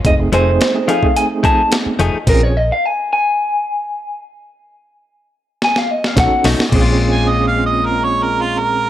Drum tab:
CC |----------------|x---------------|----------------|x---------------|
HH |x-x-x-x-x-x-x-x-|x---------------|------------x-o-|----------------|
SD |----o-------o---|----------------|--------oo-oo-oo|----------------|
BD |o------o--o-----|o---------------|------------o---|o---------------|